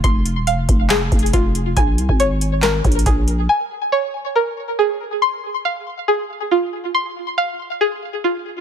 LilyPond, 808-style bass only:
\new Staff \with { instrumentName = "808-style bass" } { \clef bass \time 4/4 \key f \minor \tempo 4 = 139 f,,8. ees,,16. f,,16. f,,4 f,,8 f,,4 | bes,,8 c,16 aes,,4.~ aes,,16 bes,,8 bes,,4 | r1 | r1 |
r1 | }